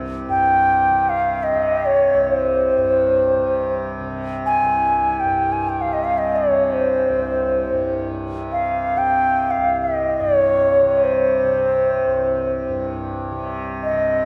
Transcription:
Already playing: tanpura C2 G2 C3
0.28 tanpura G2, bansuri G5
0.90 tanpura C3
1.09 bansuri F5
1.43 bansuri D#5
1.53 tanpura C3
1.86 bansuri C#5
2.14 tanpura C2
2.23 bansuri C#5
2.35 bansuri C5
2.76 tanpura G2
3.38 tanpura C3
4.00 tanpura C3
4.46 bansuri G#5
4.63 tanpura C2
5.20 tanpura G2, bansuri G5
5.52 bansuri G#5
5.69 bansuri G5
5.81 bansuri F5
5.85 tanpura C3
5.93 bansuri D#5
6.04 bansuri F5
6.18 bansuri D#5
6.36 bansuri C#5
6.48 tanpura C3
6.73 bansuri C5
7.09 tanpura C2
7.72 tanpura G2
8.34 tanpura C3
8.52 bansuri F5
8.96 tanpura C3, bansuri G5
9.51 bansuri F5
9.58 tanpura C2
9.82 bansuri D#5
10.20 tanpura G2, bansuri C#5
10.81 tanpura C3
11.04 bansuri C5
11.44 tanpura C3
12.06 tanpura C2
12.68 tanpura G2
13.31 tanpura C3
13.83 bansuri D#5
13.93 tanpura C3

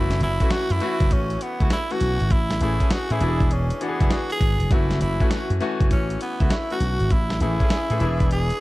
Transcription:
Already playing: slap bass F#1, grand piano E3 A3 C#4 F#4, tenor saxophone E4
0.11 snare, closed hi-hat
0.21 slap bass F#1, tenor saxophone E4, closed hi-hat
0.40 grand piano E3 A3 C#4 F#4, horn section A3 E4 F#4, kick, closed hi-hat
0.51 tenor saxophone F#4, muted slap bass stroke, snare, closed hi-hat
0.70 slap bass F#2, tenor saxophone E4, closed hi-hat
0.80 grand piano E3 A3 C#4 F#4, horn section A3 E4 F#4, closed hi-hat
1.00 slap bass F#1, kick, closed hi-hat
1.11 slap bass A1, tenor saxophone C#4, kick, closed hi-hat
1.30 closed hi-hat
1.41 tenor saxophone B3, closed hi-hat
1.60 slap bass C#2, horn section A3 E4 F#4, kick, closed hi-hat
1.70 tenor saxophone E4, snare, closed hi-hat
1.90 grand piano E3 A3 C#4 F#4, tenor saxophone F#4, closed hi-hat
2.01 slap bass B1, closed hi-hat
2.20 slap bass G#1, closed hi-hat
2.30 slap bass A1, tenor saxophone E4, kick, closed hi-hat
2.51 snare, closed hi-hat
2.61 slap bass A1, grand piano E3 A3 C#4 G#4, tenor saxophone E4, closed hi-hat
2.80 horn section A3 C#4 G#4, kick, closed hi-hat
2.91 tenor saxophone F#4, muted slap bass stroke, snare, closed hi-hat
3.10 slap bass A2, grand piano E3 A3 C#4 G#4, tenor saxophone E4, closed hi-hat
3.20 slap bass E1, grand piano E3 B3 D4 F#4, horn section D4 E4 G#4, closed hi-hat
3.28 grand piano G#4
3.40 kick, closed hi-hat
3.51 tenor saxophone C#4, closed hi-hat
3.70 closed hi-hat
3.81 grand piano E3 B3 D4 F#4, tenor saxophone B3, closed hi-hat
3.89 grand piano G#4
4.00 slap bass F#1, horn section D4 E4 G#4, kick, closed hi-hat
4.10 tenor saxophone F#4, snare, closed hi-hat
4.31 tenor saxophone G#4, closed hi-hat
4.41 slap bass G#1, kick, closed hi-hat
4.60 slap bass F1, closed hi-hat
4.71 slap bass F#1, grand piano E3 A3 C#4 F#4, tenor saxophone E4, kick, closed hi-hat
4.91 snare, closed hi-hat
5.01 slap bass F#1, tenor saxophone E4, closed hi-hat
5.20 grand piano E3 A3 C#4 F#4, horn section A3 E4 F#4, kick, closed hi-hat
5.31 tenor saxophone F#4, muted slap bass stroke, snare, closed hi-hat
5.50 slap bass F#2, closed hi-hat
5.60 grand piano E3 A3 C#4 F#4, horn section A3 E4 F#4, closed hi-hat
5.80 slap bass F#1, kick, closed hi-hat
5.91 slap bass A1, tenor saxophone C#4, kick, closed hi-hat
6.10 closed hi-hat
6.21 tenor saxophone B3, closed hi-hat
6.40 slap bass C#2, horn section A3 E4 F#4, kick, closed hi-hat
6.50 tenor saxophone E4 F#4, snare, closed hi-hat
6.70 grand piano E3 A3 C#4 F#4, tenor saxophone F#4, closed hi-hat
6.80 slap bass B1, closed hi-hat
7.00 slap bass G#1, closed hi-hat
7.10 slap bass A1, tenor saxophone E4, kick, closed hi-hat
7.30 snare, closed hi-hat
7.40 slap bass A1, grand piano E3 A3 C#4 G#4, tenor saxophone E4, closed hi-hat
7.60 horn section A3 C#4 G#4, kick, closed hi-hat
7.70 muted slap bass stroke, snare, closed hi-hat
7.90 slap bass A2, grand piano E3 A3 C#4 G#4, closed hi-hat
8.00 slap bass E1, grand piano E3 B3 D4 G#4, horn section D4 E4 G#4, closed hi-hat
8.20 kick, closed hi-hat
8.31 tenor saxophone G#4, closed hi-hat
8.50 closed hi-hat

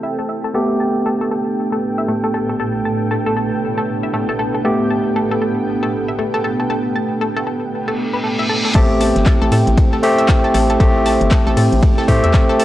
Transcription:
Already playing: tine electric piano A3 C4 G4, ambient pad C4 A4 G5, analog synth pad E4 A4 C5 G5
0.03 synth arpeggio sound E5
0.19 synth arpeggio sound A4
0.29 synth arpeggio sound E5
0.44 synth arpeggio sound A4
0.54 ambient pad A2, tine electric piano A3 B3 G4, analog synth pad A3 D4 B4, synth arpeggio sound A4
0.74 ambient pad B3
0.80 synth arpeggio sound A5
1.06 synth arpeggio sound A4
1.21 synth arpeggio sound A4
1.31 synth arpeggio sound A4
1.72 synth arpeggio sound A4
1.98 synth arpeggio sound E5
2.08 synth arpeggio sound A3
2.24 synth arpeggio sound A4
2.34 synth arpeggio sound A4
2.49 synth arpeggio sound A4
2.60 synth arpeggio sound A4
2.85 synth arpeggio sound A5
3.11 synth arpeggio sound A4
3.26 synth arpeggio sound A4
3.37 synth arpeggio sound A4
3.78 synth arpeggio sound A4
4.03 synth arpeggio sound E5
4.14 synth arpeggio sound A3
4.29 synth arpeggio sound A4
4.39 synth arpeggio sound A4
4.55 synth arpeggio sound A4
4.64 tine electric piano A3 B3 G4, synth arpeggio sound A4
4.90 synth arpeggio sound A5
5.16 synth arpeggio sound A4
5.31 synth arpeggio sound A4
5.42 synth arpeggio sound A4
5.83 synth arpeggio sound A4
6.08 synth arpeggio sound E5
6.19 synth arpeggio sound A3
6.34 synth arpeggio sound A4
6.44 synth arpeggio sound A4
6.60 synth arpeggio sound A4
6.70 synth arpeggio sound A4
6.96 synth arpeggio sound A5
7.21 synth arpeggio sound A4
7.37 synth arpeggio sound A4
7.47 synth arpeggio sound A4
7.72 reverse cymbal
7.88 synth arpeggio sound A4
8.13 synth arpeggio sound B4
8.24 synth arpeggio sound A4
8.39 synth arpeggio sound E5
8.49 synth arpeggio sound A4
8.65 synth arpeggio sound A4
8.75 fm bass A1, tine electric piano A3 C4 G4, ambient pad C4, analog synth pad E4 A4 C5 G5, synth arpeggio sound A4, kick, closed hi-hat, ride, crash
9.01 synth arpeggio sound A5, open hi-hat, ride
9.16 fm bass G1, snare, closed hi-hat
9.26 synth arpeggio sound A4, kick, snare, clap, closed hi-hat, ride
9.42 fm bass A1, synth arpeggio sound A4
9.52 fm bass A2, synth arpeggio sound A4, open hi-hat, ride
9.62 ambient pad A4
9.67 fm bass A1, closed hi-hat
9.78 kick, closed hi-hat, ride
9.93 synth arpeggio sound A4
10.03 tine electric piano A3 C4 G4, open hi-hat, ride
10.18 synth arpeggio sound E5, closed hi-hat, ride
10.28 synth arpeggio sound A3, kick, snare, clap, closed hi-hat, ride
10.44 synth arpeggio sound A4
10.54 fm bass A1, synth arpeggio sound A4, open hi-hat, ride
10.70 synth arpeggio sound A4, closed hi-hat
10.80 fm bass A1, tine electric piano A3 C4 G4, synth arpeggio sound A4, kick, closed hi-hat, ride
11.06 synth arpeggio sound A5, snare, open hi-hat, ride
11.21 fm bass G1, closed hi-hat
11.31 synth arpeggio sound A4, kick, snare, clap, closed hi-hat, ride
11.47 fm bass A1, synth arpeggio sound A4
11.57 fm bass A2, synth arpeggio sound A4, open hi-hat
11.72 fm bass A1, closed hi-hat
11.83 kick, closed hi-hat, ride
11.98 synth arpeggio sound A4, snare
12.08 fm bass A2, tine electric piano A3 C4 G4, kick, open hi-hat, ride
12.24 fm bass E2, synth arpeggio sound E5, closed hi-hat
12.34 synth arpeggio sound A3, kick, snare, clap, closed hi-hat, ride
12.49 synth arpeggio sound A4
12.59 synth arpeggio sound A4, open hi-hat, ride

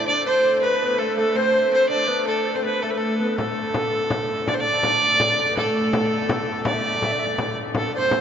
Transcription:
Already playing: hurdy-gurdy D3 A3
0.06 oud D4, recorder D5, fiddle D5
0.25 oud C4, recorder C5, fiddle C5
0.44 recorder C5
0.62 oud B3, fiddle B4, recorder B4
0.82 oud B3
0.98 oud A3, fiddle A4, recorder A4
1.17 oud A3, fiddle A4, recorder A4
1.35 oud C4, recorder C5, fiddle C5
1.72 oud C4, recorder C5, fiddle C5
1.89 oud D4, fiddle D5, recorder D5
2.08 oud B3, recorder B4
2.26 oud A3, recorder A4, fiddle A4
2.54 oud C4, recorder C5, fiddle C5
2.63 oud B3, recorder B4, fiddle B4
2.82 oud A3, fiddle A4, recorder A4
2.90 fiddle B4
2.96 oud A3, recorder A4, fiddle A4
3.19 oud B3, recorder B4
3.30 recorder B4
3.37 hurdy-gurdy D3 A3, oud A3, recorder A4, fiddle A4, frame drum
3.74 frame drum
4.10 frame drum
4.29 frame drum
4.47 oud D4, recorder D5, fiddle D5, frame drum
4.54 fiddle C5
4.60 oud D4, fiddle D5, recorder D5
4.83 frame drum
5.20 frame drum
5.39 frame drum
5.51 oud B3
5.56 oud A3, fiddle A4, recorder A4 B4, frame drum
5.93 frame drum
6.29 frame drum
6.48 frame drum
6.65 oud D4, recorder D5, fiddle D5, frame drum
6.74 recorder E5
6.82 recorder D5, frame drum
6.89 recorder E5
6.97 recorder D5
7.02 recorder E5, frame drum
7.12 recorder D5
7.19 recorder E5
7.26 recorder D5
7.38 frame drum
7.74 hurdy-gurdy D3 A3, recorder A4, fiddle A4, frame drum
7.94 fiddle C5, recorder D5
7.98 recorder C5
8.11 frame drum

